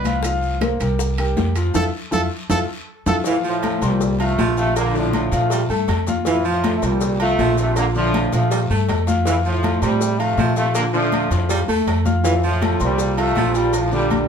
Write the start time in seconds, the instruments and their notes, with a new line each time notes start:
Already playing: upright bass C2, trumpet B4
0.04 grand piano F3 F4 F5, high bongo, high conga, high timbale, short guiro, maracas
0.23 grand piano F3 F4 F5, high bongo, high conga, high timbale, maracas
0.42 high conga, maracas
0.61 grand piano A#3 A#4 C5, high bongo, high conga, high timbale, low timbale, short guiro, maracas
0.80 upright bass C2, grand piano G3 G4 A#4, high timbale, short guiro, maracas
0.99 high bongo, high conga, long guiro, maracas
1.18 grand piano G3 G4 A#4, high bongo, high conga, high timbale, maracas
1.37 upright bass F2, high bongo, low bongo, high conga, low timbale, short guiro, maracas
1.56 grand piano F3 F4 F5, high bongo, high conga, high timbale, short guiro, maracas
1.74 upright bass F2, grand piano E4 F4 A4, trumpet A4, low bongo, low conga, high timbale, long guiro, maracas
2.11 upright bass F2, grand piano E4 F4 A4, trumpet A4, low bongo, low conga, high timbale, long guiro, maracas
2.49 upright bass F2, grand piano E4 F4 A4, trumpet A4, low bongo, low conga, high timbale, maracas
3.06 upright bass F2, grand piano E4 F4 A4, trumpet A4, low bongo, low conga, high timbale, long guiro, maracas
3.24 trombone section A2 E3, baritone saxophone E3, grand piano F3 F4 F5, cowbell, high conga, low agogo, long guiro, maracas
3.44 trombone section A2 F3, baritone saxophone F3, high conga, maracas
3.63 grand piano A3 A4 A5, cowbell, high conga, low timbale, low agogo, short guiro, maracas
3.81 upright bass C2, trombone section A#2 G3, grand piano C4 C5 C6, cowbell, high conga, low agogo, short guiro, maracas
4.01 cowbell, high conga, long guiro, maracas
4.20 trombone section C3 A3, grand piano F3 F4 F5, high conga, low agogo, maracas
4.38 upright bass A#1, baritone saxophone F3, cowbell, high conga, low timbale, low agogo, short guiro, maracas
4.57 trombone section C3 A3, grand piano F3 F4 F5, cowbell, high conga, short guiro, maracas
4.76 trombone section D3 A#3, cowbell, high conga, low agogo, long guiro, maracas
4.94 trombone section A2 F3, grand piano D3 D4 D5, high conga, maracas
5.13 cowbell, high conga, low timbale, low agogo, short guiro, maracas
5.32 upright bass A#2, grand piano F3 F4 F5, trombone section F3 A3, cowbell, low agogo, short guiro, maracas
5.50 baritone saxophone G3, cowbell, high conga, low agogo, long guiro, maracas
5.69 upright bass G2, baritone saxophone A3, grand piano A3 A4 A5, high conga, maracas
5.88 upright bass F2, cowbell, high conga, low timbale, low agogo, short guiro, maracas
6.07 grand piano F4 F5 F6, cowbell, high conga, short guiro, maracas
6.25 trombone section A2 E3, baritone saxophone E3, grand piano F3 F4 F5, cowbell, low agogo, long guiro, maracas
6.44 trombone section A2 F3, baritone saxophone F3, high conga, maracas
6.64 grand piano A3 A4 A5, cowbell, high conga, low timbale, low agogo, short guiro, maracas
6.77 trombone section A3
6.82 upright bass C2, trombone section A#2 G3, grand piano C4 C5 C6, cowbell, low agogo, short guiro, maracas
7.01 cowbell, high conga, long guiro, maracas
7.20 trombone section C3 A3, grand piano F3 F4 F5, high conga, low agogo, maracas
7.38 upright bass A#1, baritone saxophone F3, cowbell, high conga, low timbale, low agogo, short guiro, maracas
7.58 trombone section C3 A3, grand piano F3 F4 F5, cowbell, short guiro, maracas
7.76 trombone section D3 A#3, cowbell, high conga, low agogo, long guiro, maracas
7.95 trombone section A2 F3, grand piano D3 D4 D5, high conga, maracas
8.14 cowbell, high conga, low timbale, low agogo, short guiro, maracas
8.32 upright bass A#2, grand piano F3 F4 F5, trombone section F3 A3, cowbell, low agogo, short guiro, maracas
8.51 baritone saxophone G3, cowbell, high conga, low agogo, long guiro, maracas
8.70 upright bass G2, baritone saxophone A3, grand piano A3 A4 A5, high conga, maracas
8.88 upright bass F2, cowbell, high conga, low timbale, low agogo, short guiro, maracas
9.07 grand piano F4 F5 F6, cowbell, high conga, short guiro, maracas
9.25 trombone section A2 E3, baritone saxophone E3, grand piano F3 F4 F5, cowbell, low agogo, long guiro, maracas
9.45 trombone section A2 F3, baritone saxophone F3, high conga, maracas
9.63 grand piano A3 A4 A5, cowbell, high conga, low timbale, low agogo, short guiro, maracas
9.82 upright bass A2, trombone section C3 G3, grand piano C4 C5 C6, cowbell, low agogo, short guiro, maracas
10.01 cowbell, high conga, long guiro, maracas
10.19 trombone section C3 A3, grand piano F3 F4 F5, high conga, low agogo, maracas
10.38 upright bass A#2, baritone saxophone F3, cowbell, high conga, low timbale, low agogo, short guiro, maracas
10.56 trombone section C3 A3, grand piano F3 F4 F5, cowbell, high conga, short guiro, maracas
10.75 trombone section D3 A#3, cowbell, high conga, low agogo, long guiro, maracas
10.93 grand piano D3 D4 D5, trombone section F3 A3, high conga, maracas
11.12 cowbell, high conga, low timbale, low agogo, short guiro, maracas
11.30 upright bass F2, trombone section A2 F3, grand piano F3 F4 F5, cowbell, high conga, low agogo, short guiro, maracas
11.49 baritone saxophone G3, cowbell, high conga, low agogo, long guiro, maracas
11.68 upright bass E2, grand piano A3 A4 A5, baritone saxophone A3, high conga, maracas
11.87 upright bass F2, cowbell, high conga, low timbale, low agogo, short guiro, maracas
12.05 grand piano F4 F5 F6, cowbell, high conga, short guiro, maracas
12.23 trombone section A2, baritone saxophone E3, grand piano F3 F4 F5, cowbell, high conga, low agogo, long guiro, maracas
12.27 trombone section E3
12.43 trombone section A2 F3, baritone saxophone F3, high conga, maracas
12.61 grand piano A3 A4 A5, cowbell, high conga, low timbale, low agogo, short guiro, maracas
12.80 upright bass C2, trombone section A#2 G3, grand piano C4 C5 C6, cowbell, high conga, low agogo, short guiro, maracas
12.98 cowbell, high conga, long guiro, maracas
13.17 trombone section C3 A3, grand piano F3 F4 F5, high conga, low agogo, maracas
13.35 upright bass A#1, baritone saxophone F3, cowbell, high conga, low timbale, low agogo, short guiro, maracas
13.54 trombone section A#2 G3, grand piano F3 F4 F5, cowbell, high conga, short guiro, maracas
13.73 trombone section A2 F3, cowbell, high conga, low agogo, long guiro, maracas
13.92 trombone section A#2 G3, grand piano D3 D4 D5, high conga, maracas
14.10 cowbell, high conga, low timbale, low agogo, short guiro, maracas